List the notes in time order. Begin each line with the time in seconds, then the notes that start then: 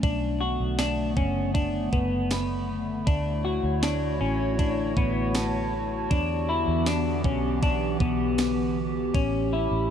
Already playing: A3
0.03 B1 D3 B3 D4, kick, ride
0.41 F#4
0.60 B1
0.79 D4, snare, ride, tambourine
1.17 F#1 C#4, kick
1.54 D4, kick, ride
1.93 F#1 B3, kick
2.31 B5, snare, ride, tambourine
3.07 D2 D4 E4 F#4 C#5, kick, ride
3.45 F#4
3.63 D2
3.83 D4, snare, ride, tambourine
4.21 A1 C#4
4.59 D4, kick, ride
4.97 A1 B3, kick
5.35 A5, snare, ride, tambourine
6.11 E2 D3 E3 B3 D4 G4, kick, ride
6.49 E4
6.68 E2
6.86 D4, snare, ride, tambourine
7.24 B1 C#4, kick
7.63 D4, kick, ride
8.00 B1 B3, kick
8.38 snare, ride, tambourine
9.14 A1 A3 C#4, kick, ride
9.53 E4
9.71 A1